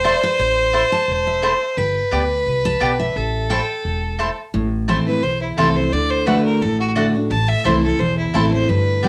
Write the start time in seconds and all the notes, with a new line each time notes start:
Already playing: E1 C5
0.04 A3 E4 C5 D5 A5
0.23 B4
0.39 A1 C5
0.73 A3 E4 C5 A5
0.92 A5
1.08 E1
1.27 E5
1.42 A3 E4 C5 A5
1.77 G1 B4 G5
2.11 D2 B3 G4 D5 G5
2.46 C2
2.65 A5
2.80 B1 B3 G4 D5 G5
3.00 E5
3.16 A1 A4
3.50 A3 E4 C5 G5 A5
3.85 E1
4.19 A3 E4 C5 A5
4.54 A1 A2
4.88 E3 A3 C4 E4 C5 A5
5.06 C4 E4 B4
5.23 B1 E2 C5
5.42 E4
5.58 C2 E3 A3 C4 E4 A4 C5 A5
5.76 C4 E4 C5
5.92 D2 D3 D5
6.11 C5
6.26 D3 A3 D4 F#4 B4 D5 F#5
6.45 A#4
6.61 A1 A2 A4
6.80 F#4
6.95 D3 A3 D4 F#4 D5 F#5
7.15 D4 F#4
7.30 A1 A2 A5
7.49 E5
7.64 C2 E3 A3 C4 E4 C5 A5
7.83 C4 E4 A4
8.00 B1 E2 C5
8.18 E4
8.34 A1 E3 A3 C4 E4 A4 C5 A5
8.53 C4 E4 C5
8.69 G1 G2 B4
9.03 D3 G3 B3 G4 D5 G5